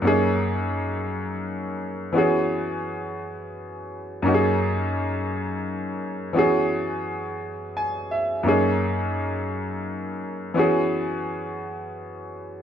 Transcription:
grand piano
0.02 F#2 A#3 C#4
0.06 D#4 G#4
2.13 E3 B3 C#4 F#4
2.18 G#4
4.22 F#2 A#3 C#4
4.26 D#4 F#4
4.34 G#4
6.33 E3 B3 C#4 F#4
6.39 G#4
7.77 G#5
8.11 E5
8.43 F#2 A#3 C#4
8.48 D#4 G#4
10.54 E3 B3 C#4
10.58 F#4 G#4

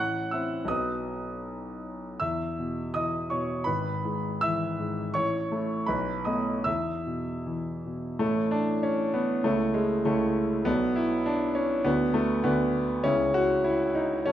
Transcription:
grand piano
Already playing: A1 F#5 F#6
0.31 C4 E4 E5 E6
0.65 B1 F#3 B3 B4 D#6
0.69 D#5
2.20 E2 E5 E6
2.59 B2
2.94 E3 D#5 D#6
3.30 B2 C#5 C#6
3.64 G#1 B4 B5
4.05 G#2
4.41 E3 E5 E6
4.79 G#2
5.14 A1 C#5 C#6
5.52 A3 E4
5.86 B1 B4 B5
6.25 A3 B3 D#5 D#6
6.64 E2 E5 E6
7.06 B2
7.46 E3
7.86 B2
8.19 A1 A3 E4 A4 C#5
8.51 D4
8.83 C#4
9.14 B3
9.44 C#2 A3 E4 A4 C#5
9.74 G#3
10.05 C#2 A3 E4 A4 C#5
10.65 B1 B3 F#4 A4 D5
10.96 E4
11.26 D4
11.55 C#4
11.84 D2 B3 F#4 B4 D5
12.14 A3
12.44 D2 B3 F#4 B4 D5
13.04 C#2 C#4 E4 G#4 E5
13.34 F#4
13.64 E4
13.95 D#4
14.26 A1 C#4 F#4 A4 C#5

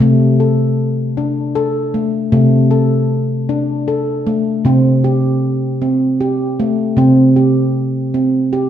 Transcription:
handpan
0.00 C3 A3
0.40 A4
1.17 D4
1.55 A4
1.94 A3
2.32 C3 A3
2.71 A4
3.49 D4
3.88 A4
4.27 A3
4.65 C3 C4
5.04 G4
5.82 C4
6.21 G4
6.60 A3
6.97 C3 C4
7.36 G4
8.14 C4
8.53 G4

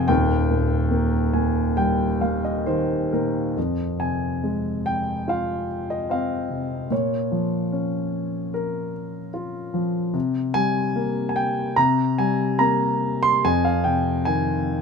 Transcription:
grand piano
Already playing: F1 F2 C3 A#4 F5 G5 G#5
0.08 D#1 D#2 G5
0.50 A#2
0.91 A#3
1.33 A#2 G#5
1.77 G3 G5
2.21 A#2 F5
2.44 D#5
2.66 D#3 C5
3.13 A#2 A#4
3.57 F2
4.00 C3 G#5
4.44 G#3
4.86 G5
5.28 F4 F5
5.90 D#5
6.10 C4 F5
6.50 C3
6.90 A#2 C#5
7.32 F3
7.72 C#4
8.54 A#4
9.34 F4
9.74 F3
10.14 C3
10.54 G3 G#5
10.96 A#3
11.29 G#5
11.36 G5
11.76 C3 A#5
12.18 G3 G#5
12.59 A#3 A#5
13.23 C6
13.44 F2 G#5
13.65 F5
13.84 C3 G5
14.25 D#3 G#5

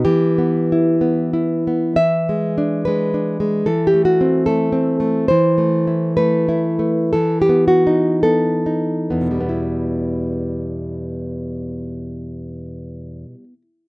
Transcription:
nylon-string guitar
0.05 E3 G4
0.38 B3
0.72 E4
1.01 B3
1.33 E4
1.67 B3
1.96 E3 E5
2.29 G#3
2.58 D4
2.85 G#3 B4
3.14 D4
3.40 G#3
3.66 E3 A4
3.87 G4
3.94 A3
4.05 F#4
4.21 C4
4.46 A3 A4
4.72 C4
5.00 A3
5.28 E3 C5
5.58 A3
5.87 E4
6.17 A3 B4
6.49 E4
6.79 A3
7.13 E3 A4
7.42 G4
7.49 B3
7.68 F#4
7.87 D#4
8.23 B3 A4
8.66 D#4
9.10 E2 B3
9.21 B2
9.31 G3
9.41 B3
9.49 E4

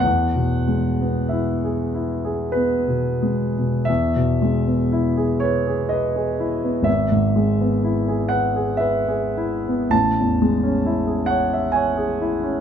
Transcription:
grand piano
0.00 E2 F#5
0.35 B2
0.68 G#3
1.01 B3
1.29 E4 E5
1.64 G#4
1.94 E4
2.24 G#4
2.52 B3 B4
2.88 B2
3.23 G#3
3.58 B2
3.85 E2 E5
4.16 B2
4.42 G#3
4.67 B3
4.92 E4
5.17 G#4
5.40 B4 C#5
5.67 G#4
5.89 B4 D#5
6.16 G#4
6.40 E4
6.64 B3
6.82 G#1 E5
7.12 G#2
7.36 G#3
7.60 B3
7.84 E4
8.08 G#4
8.29 B4 F#5
8.56 G#4
8.77 B4 E5
9.08 G#4
9.37 E4
9.68 B3
9.90 A1 A5
10.20 E2
10.42 G#3
10.63 C#4
10.86 E4
11.07 G#4
11.26 C#5 F#5
11.53 E5
11.72 C#5 G#5
11.97 G#4
12.21 E4
12.43 C#4

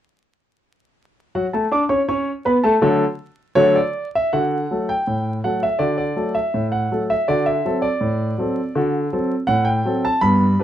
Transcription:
grand piano
1.35 F#3 F#4 F#5
1.54 A3 A4 A5
1.72 D4 D5 D6
1.89 C#4 C#5 C#6
2.08 C#4 C#5 C#6
2.45 B3 B4 B5
2.63 A3 A4 A5
2.81 D3 F#3 A3 A4
3.55 D3 F#3 A3 A4 C#5
3.75 D5
4.15 E5
4.33 D3 F#4 F#5
4.71 F#3 A3 A4
4.89 G5
5.07 A2
5.44 F#3 A3 A4 F#5
5.63 E5
5.79 D3 F#4 D5
5.98 D5
6.16 F#3 A3 A4
6.35 E5
6.54 A2
6.72 F#5
6.92 F#3 A3 A4
7.10 E5
7.28 D3 F#4 D5
7.46 E5
7.65 F#3 C4 A4
7.82 D5
8.01 A2
8.38 F#3 C4 A4
8.76 D3 F#4
9.13 F#3 C4 A4
9.47 A2 F#5
9.65 G5
9.85 F#3 C4 A4
10.05 A5
10.21 G2 B3 B5
10.59 G3 D4 B4

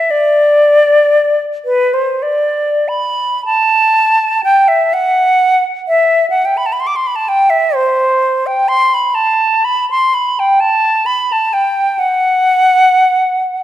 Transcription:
flute
Already playing: E5
0.11 D5
1.65 B4
1.94 C5
2.23 D5
2.88 B5
3.45 A5
4.44 G5
4.68 E5
4.93 F#5
5.88 E5
6.30 F#5
6.45 G5
6.57 B5
6.66 A5
6.73 B5
6.80 C6
6.87 D6
6.96 C6
7.07 B5
7.16 A5
7.29 G5
7.50 E5
7.75 C5
8.47 G5
8.68 C6
8.94 B5
9.15 A5
9.65 B5
9.91 C6
10.14 B5
10.39 G5
10.60 A5
11.06 B5
11.32 A5
11.53 G5
11.99 F#5

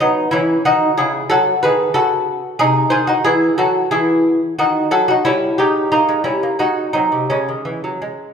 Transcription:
lute
0.00 F#3 B3 D#4
0.31 E3 C#4 E4
0.65 D#3 D#4 F#4
0.97 C#3 E4 G#4
1.30 F#3 F#4 A4
1.63 D#3 G#4 B4
1.94 C#3 F#4 A4
2.59 C3 D#4 G#4
2.90 D#3 G#4 C5
3.07 D#4 F#4
3.24 E3 E4 G#4
3.58 F#3 F#4 A4
3.91 E3 E4 G#4
4.58 D#3 D#4 F#4
4.91 F#3 F#4 A4
5.08 D#4 F#4
5.25 G3 C#4 E4
5.58 G#3 D#4 G4
5.92 A#3 D#4
6.09 G#3
6.24 G3 C#4 E4
6.43 A#3
6.59 G#3 D#4 F#4
6.93 F#3 C4 D#4
7.12 C3
7.30 C#3 G#3 C#4
7.49 D#3
7.65 E3
7.84 F#3
8.02 G#3

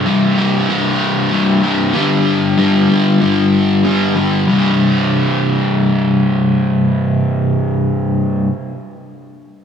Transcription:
overdriven electric guitar
0.06 C2 G2 C3
0.37 C2 G2 C3
0.69 C2 G2 C3
1.32 C2 G2 C3
1.63 C2 G2 C3
1.94 G2 D3 G3
2.57 G2 D3 G3
2.89 G2 D3 G3
3.21 G2 D3 G3
3.83 G2 D3 G3
4.14 G2 D3 G3
4.46 C2 G2
4.50 C3

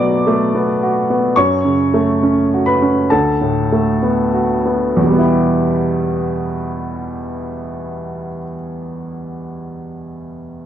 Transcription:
upright piano
Already playing: B2 A3 B3 F#4 D5 D6
0.00 F#3
0.27 A3
0.55 B3
0.83 F#4
1.10 B3
1.36 F#2 C#5 C#6
1.65 C#3
1.94 A3
2.23 C#4
2.54 F#4
2.66 B4 B5
2.82 C#4
3.10 D2 A4 A5
3.41 A2
3.72 A3
4.03 B3
4.34 F#4
4.66 B3
4.97 E2
5.02 B2
5.07 G3
5.13 B3
5.18 E4
5.24 G4

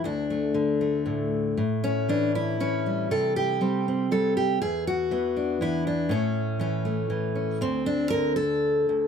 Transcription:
steel-string acoustic guitar
0.04 D2 D4
0.30 A3
0.54 D3
0.81 A3
1.06 A2
1.57 A2
1.84 C#4
2.09 E3 D4
2.35 E4
2.60 E3 C#4
2.86 G3
3.11 C3 A4
3.36 G4
3.61 G3 C4
3.88 C4
4.11 G3 A4
4.37 G4
4.62 E2 G#4
4.87 F#4
5.11 E3 B3
5.37 D4
5.61 E3 E4
5.87 D4
6.09 A2 C#4
6.59 E3 C#4
6.85 A3
7.10 E3
7.35 C#4
7.61 D2 C4
7.86 D4
8.10 D3 A#4
8.36 A4
8.89 D2

